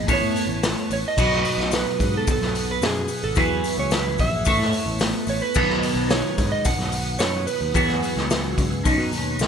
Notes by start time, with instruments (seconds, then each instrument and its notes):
0.07 picked electric bass A1, clean electric guitar A3 B3 E4 A4 C#5, tonewheel organ B4 A5 C#6, kick, open hi-hat, maracas
0.13 electric slide guitar C#5
0.21 picked electric bass A2, maracas
0.36 open hi-hat, maracas
0.47 picked electric bass A1, maracas
0.63 snare, open hi-hat, maracas
0.78 maracas
0.90 picked electric bass A1, electric slide guitar C#5, open hi-hat, maracas
1.04 electric slide guitar D#5, maracas
1.17 picked electric bass B1, clean electric guitar B2 F#3 B3 D#4 F#4 B4, tonewheel organ B4, kick, crash, maracas
1.21 tonewheel organ F#5 D#6
1.32 snare
1.45 open hi-hat, maracas
1.58 picked electric bass B1, snare
1.72 snare, open hi-hat, maracas
1.76 electric slide guitar B4
2.00 picked electric bass G#2, kick, open hi-hat, maracas
2.17 electric slide guitar A4
2.27 electric slide guitar A4, kick, open hi-hat, maracas
2.41 picked electric bass B1, snare, maracas
2.55 open hi-hat, maracas
2.71 electric slide guitar B4
2.82 picked electric bass F#2, electric slide guitar G#4, snare, open hi-hat, maracas
2.96 maracas
3.08 open hi-hat, maracas
3.23 picked electric bass G#1, electric slide guitar A4, maracas
3.35 picked electric bass E2, clean electric guitar E3 F#3 B3 E4 G#4, tonewheel organ G#4 E6, electric slide guitar B4, kick, open hi-hat, maracas
3.64 open hi-hat, maracas
3.78 picked electric bass C#2, electric slide guitar C#5, maracas
3.91 electric slide guitar B4, snare, open hi-hat, maracas
4.18 picked electric bass A#1, electric slide guitar E5, kick, open hi-hat, maracas
4.45 picked electric bass A1, clean electric guitar A3 B3 E4 A4 C#5, tonewheel organ B4 A5 C#6, kick, open hi-hat, maracas
4.59 picked electric bass A2, snare
4.73 open hi-hat, maracas
4.86 picked electric bass A1
4.99 snare, open hi-hat, maracas
5.13 maracas
5.27 picked electric bass A1, electric slide guitar C#5, open hi-hat, maracas
5.41 electric slide guitar B4, maracas
5.55 picked electric bass B1, clean electric guitar B2 D#3 F#3 B3 D#4 B4, tonewheel organ F#5 D#6, kick, crash, maracas
5.70 snare
5.83 open hi-hat, maracas
5.95 picked electric bass B1, maracas
6.10 electric slide guitar C#5, snare, open hi-hat, maracas
6.38 picked electric bass G#2, kick, open hi-hat, maracas
6.52 electric slide guitar D#5
6.65 electric slide guitar F#5, kick, open hi-hat, maracas
6.79 picked electric bass B1, snare, maracas
6.92 open hi-hat, maracas
7.19 picked electric bass F#2, electric slide guitar C#5, snare, open hi-hat, maracas
7.34 maracas
7.47 electric slide guitar B4, open hi-hat, maracas
7.61 picked electric bass D#2, maracas
7.74 picked electric bass E2, clean electric guitar E3 F#3 B3 F#4 G#4, tonewheel organ G#4 E6, kick, open hi-hat, maracas
7.88 snare
8.03 open hi-hat, maracas
8.16 picked electric bass C#2, snare
8.30 snare, open hi-hat, maracas
8.44 maracas
8.58 picked electric bass C#2, kick, open hi-hat, maracas
8.72 maracas
8.84 picked electric bass B1, clean electric guitar B2 D#3 F#3 C#4 D#4, tonewheel organ B4 D#5 C#6, kick, open hi-hat, maracas
8.98 picked electric bass B2, maracas
9.12 picked electric bass D#2, open hi-hat, maracas
9.39 picked electric bass C#2, snare, maracas